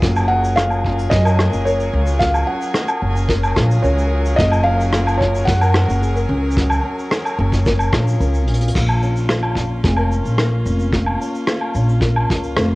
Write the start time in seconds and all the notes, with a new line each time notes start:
Already playing: C#4 F4 G#4
0.02 F#1 F#3 C#4 A#4, kick, shaker
0.16 low woodblock, shaker
0.28 C#4 F#5
0.44 shaker
0.56 F4 F5, cross-stick, shaker
0.70 low woodblock, shaker
0.84 C#4, kick
0.99 shaker
1.10 F#2 G#4 D#5, kick, shaker
1.25 A#4, low woodblock, shaker
1.38 F4, cross-stick
1.52 F#1, shaker
1.65 A#4 C#5, shaker
1.80 shaker
1.93 C#2 F4
2.07 shaker
2.19 F#3 F5, kick, shaker
2.34 low woodblock, shaker
2.47 C#4 F#5
2.62 shaker
2.74 cross-stick, shaker
2.88 low woodblock, shaker
3.02 F#1 C#4
3.16 shaker
3.29 A#4, kick, shaker
3.43 low woodblock, shaker
3.56 A#1 F4, kick, cross-stick
3.71 shaker
3.82 C#2 A#4 C#5, shaker
3.98 shaker
4.11 F4
4.26 shaker
4.36 F#1 F#3 D#5, kick, shaker
4.52 low woodblock, shaker
4.64 C#4 F5
4.81 shaker
4.93 F4, cross-stick, shaker
5.07 low woodblock, shaker
5.17 C#4 C#5, kick
5.35 shaker
5.45 F#2 G#4 F#5, kick, shaker
5.61 A#4, low woodblock, shaker
5.74 cross-stick
5.88 F#1, shaker
6.02 G#4, shaker
6.16 A#4, shaker
6.29 C#2
6.51 shaker
6.57 F#3, kick, shaker
6.70 low woodblock, shaker
6.84 C#4
6.99 shaker
7.11 cross-stick, shaker
7.25 low woodblock, shaker
7.38 F#1 C#4
7.52 kick, shaker
7.66 A#4, kick, shaker
7.79 low woodblock, shaker
7.93 A#1 F4, kick, cross-stick
8.07 shaker
8.20 C#2 A#4, shaker
8.34 shaker
8.47 A#1 F4, closed hi-hat
8.54 closed hi-hat
8.61 closed hi-hat
8.68 closed hi-hat
8.75 A#1 A#2 A#3 C#4 F4, kick, crash, shaker
8.89 low woodblock
9.02 C#4, shaker
9.16 shaker
9.29 F4, cross-stick, shaker
9.43 low woodblock
9.56 C#4, kick, shaker
9.84 F1 G#4, kick, shaker
9.97 A#4, low woodblock
10.11 F4, shaker
10.25 A#1, shaker
10.38 A#4, cross-stick, shaker
10.66 F1 C#4, shaker
10.79 shaker
10.93 A#2, kick, shaker
11.06 low woodblock
11.20 C#4, shaker
11.35 shaker
11.47 F4, cross-stick, shaker
11.61 low woodblock
11.75 A#1 C#4, shaker
11.89 shaker
12.01 A#4, kick, shaker
12.16 low woodblock
12.29 C#2 F4, kick, shaker
12.43 shaker
12.57 F1 A#4, cross-stick, shaker